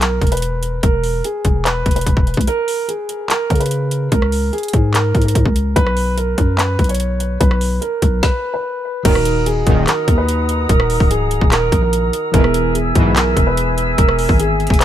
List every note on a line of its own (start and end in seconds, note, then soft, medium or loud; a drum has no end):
0.00 0.20 B1 loud
0.00 0.30 A#4 medium
0.00 clap loud
0.00 closed hi-hat medium
0.21 0.81 E1 loud
0.21 kick medium
0.21 closed hi-hat soft
0.27 closed hi-hat medium
0.32 0.80 B4 medium
0.32 closed hi-hat medium
0.37 closed hi-hat medium
0.42 closed hi-hat medium
0.63 closed hi-hat medium
0.83 1.23 E1 loud
0.83 1.22 A#4 medium
0.83 kick loud
0.83 closed hi-hat medium
1.04 open hi-hat medium
1.24 1.63 G#4 medium
1.24 closed hi-hat medium
1.45 1.84 E1 loud
1.45 kick loud
1.45 closed hi-hat medium
1.65 1.94 B4 medium
1.65 clap loud
1.65 closed hi-hat medium
1.86 2.06 E1 loud
1.86 kick medium
1.86 closed hi-hat medium
1.91 closed hi-hat medium
1.96 2.44 B4 medium
1.96 closed hi-hat medium
2.01 closed hi-hat medium
2.06 2.36 E1 loud
2.06 kick medium
2.06 closed hi-hat medium
2.17 kick loud
2.27 closed hi-hat soft
2.34 2.47 C#2 loud
2.34 kick medium
2.34 closed hi-hat medium
2.41 closed hi-hat medium
2.47 2.86 A#4 loud
2.47 closed hi-hat medium
2.68 open hi-hat medium
2.88 3.27 G#4 medium
2.88 closed hi-hat medium
3.09 closed hi-hat medium
3.30 3.59 A#4 medium
3.30 clap loud
3.30 closed hi-hat medium
3.50 4.09 C#3 loud
3.50 kick medium
3.50 closed hi-hat soft
3.55 closed hi-hat medium
3.60 4.09 B4 medium
3.60 closed hi-hat medium
3.66 closed hi-hat medium
3.71 closed hi-hat medium
3.91 closed hi-hat medium
4.12 4.51 C#2 loud
4.12 4.51 A#4 medium
4.12 kick loud
4.12 closed hi-hat medium
4.22 cross-stick medium
4.32 open hi-hat medium
4.53 4.92 G#4 medium
4.53 closed hi-hat soft
4.58 closed hi-hat medium
4.63 closed hi-hat medium
4.68 closed hi-hat medium
4.73 5.13 G#2 loud
4.73 kick loud
4.73 closed hi-hat medium
4.94 5.23 A#4 medium
4.94 cross-stick medium
4.94 clap loud
4.94 closed hi-hat medium
5.15 5.34 G#2 loud
5.15 kick medium
5.15 closed hi-hat soft
5.22 5.73 A#4 medium
5.22 closed hi-hat medium
5.28 closed hi-hat medium
5.35 5.45 G#2 loud
5.35 kick medium
5.35 closed hi-hat medium
5.45 5.75 C#2 loud
5.45 kick loud
5.56 closed hi-hat medium
5.76 6.36 B1 loud
5.76 6.15 B4 loud
5.76 kick loud
5.76 closed hi-hat medium
5.87 cross-stick medium
5.97 open hi-hat medium
6.18 6.56 A#4 medium
6.18 closed hi-hat medium
6.38 6.77 F#2 loud
6.38 kick medium
6.38 closed hi-hat medium
6.58 6.87 B4 medium
6.58 cross-stick medium
6.58 clap loud
6.58 closed hi-hat medium
6.79 7.38 B1 loud
6.79 kick medium
6.79 closed hi-hat soft
6.84 closed hi-hat medium
6.89 7.37 C#5 medium
6.89 closed hi-hat medium
6.95 closed hi-hat medium
7.00 closed hi-hat medium
7.20 closed hi-hat medium
7.40 7.80 B1 loud
7.40 7.79 B4 medium
7.40 kick loud
7.40 closed hi-hat medium
7.51 cross-stick loud
7.61 open hi-hat medium
7.81 8.20 A#4 medium
7.81 closed hi-hat medium
8.02 8.22 B1 loud
8.02 kick medium
8.02 closed hi-hat medium
8.23 8.52 B4 loud
8.23 kick loud
8.23 snare medium
8.54 9.02 B4 medium
9.03 9.64 D#1 loud
9.03 9.14 F#2 medium
9.03 9.14 A#2 medium
9.03 12.29 D#3 medium
9.03 9.14 D#3 loud
9.03 12.30 D#4 medium
9.03 12.30 F#4 medium
9.03 9.44 A#4 loud
9.03 12.31 D#5 medium
9.03 12.31 F#5 medium
9.03 12.31 A#5 medium
9.03 12.31 D#6 medium
9.03 kick loud
9.03 closed hi-hat medium
9.03 crash loud
9.15 cross-stick loud
9.25 closed hi-hat medium
9.46 9.85 G#4 medium
9.46 closed hi-hat medium
9.67 9.86 D#1 loud
9.67 9.84 F#2 loud
9.67 9.84 A#2 medium
9.67 9.84 D#3 loud
9.67 kick loud
9.67 closed hi-hat medium
9.87 10.16 A#4 medium
9.87 cross-stick medium
9.87 clap loud
9.87 closed hi-hat medium
10.08 10.67 D#2 loud
10.08 kick medium
10.08 closed hi-hat medium
10.18 10.66 B4 medium
10.29 closed hi-hat medium
10.49 closed hi-hat medium
10.69 10.99 D#1 loud
10.69 11.08 A#4 medium
10.69 kick loud
10.69 closed hi-hat medium
10.80 cross-stick loud
10.90 open hi-hat medium
11.00 11.40 C#1 loud
11.00 kick loud
11.11 11.49 G#4 medium
11.11 closed hi-hat medium
11.31 closed hi-hat medium
11.41 11.71 D#1 loud
11.41 kick loud
11.52 11.81 A#4 loud
11.52 cross-stick medium
11.52 clap loud
11.52 closed hi-hat medium
11.72 12.12 A#1 loud
11.72 kick medium
11.72 closed hi-hat medium
11.82 12.31 A#4 medium
11.93 closed hi-hat medium
12.13 closed hi-hat medium
12.32 12.93 E1 loud
12.32 12.43 G#2 medium
12.32 12.43 B2 medium
12.32 14.85 E3 medium
12.32 12.43 E3 loud
12.32 14.85 B3 medium
12.32 14.85 E4 medium
12.32 14.85 G#4 medium
12.32 12.72 A#4 loud
12.32 14.85 E5 medium
12.32 14.85 G#5 medium
12.32 14.85 E6 loud
12.32 kick loud
12.32 closed hi-hat medium
12.44 cross-stick medium
12.54 closed hi-hat medium
12.75 13.14 G#4 medium
12.75 closed hi-hat medium
12.95 13.35 B1 loud
12.95 13.13 G#2 loud
12.95 13.13 B2 medium
12.95 13.13 E3 loud
12.95 kick loud
12.95 closed hi-hat medium
13.16 13.45 A#4 medium
13.16 cross-stick medium
13.16 clap loud
13.16 closed hi-hat medium
13.37 13.96 E1 loud
13.37 kick medium
13.37 closed hi-hat medium
13.47 13.95 B4 medium
13.57 closed hi-hat medium
13.78 closed hi-hat medium
13.98 14.28 E1 loud
13.98 14.37 A#4 medium
13.98 kick loud
13.98 closed hi-hat medium
14.09 cross-stick loud
14.19 open hi-hat medium
14.29 14.69 G#1 loud
14.29 kick loud
14.40 14.78 G#4 medium
14.40 closed hi-hat medium
14.60 closed hi-hat soft
14.67 14.85 E1 loud
14.67 kick loud
14.67 closed hi-hat medium
14.74 closed hi-hat medium
14.80 14.85 B4 medium
14.80 clap loud
14.80 closed hi-hat medium